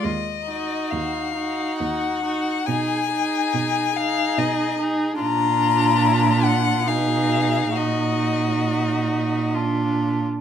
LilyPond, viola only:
\new Staff \with { instrumentName = "Viola" } { \time 3/4 \key ees \minor \tempo 4 = 69 r8 ees'4 ees'4 ees'8 | ees'8 ees'4 ees'4 ees'8 | d'2 ees'4 | ees'2 d'8. r16 | }